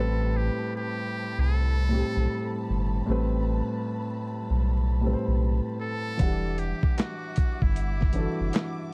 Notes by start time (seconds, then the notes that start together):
Already playing: A1 A2 G3 C4 E4 G4 A4 A5 B5
0.00 B4
0.36 G4
0.76 G4
1.38 C2 A4
1.89 A2 G3 C4
1.95 G4
2.16 B1
2.70 G1
3.06 A1 A2 G3 C4
3.11 B4
4.50 B1
5.01 A2 G3 C4
5.07 B4
5.13 C5
5.28 B1
5.81 A4
6.17 E1 E3 D4 E5 F#5 D6, kick, closed hi-hat
6.23 G3
6.58 G4, closed hi-hat
6.83 kick
6.97 F#4, snare, clap, closed hi-hat
7.36 kick, closed hi-hat
7.62 G1 E4, kick
7.76 closed hi-hat
8.01 kick, snare
8.13 E3 D4, closed hi-hat
8.17 F#4 A4
8.40 F#1
8.53 snare, clap, closed hi-hat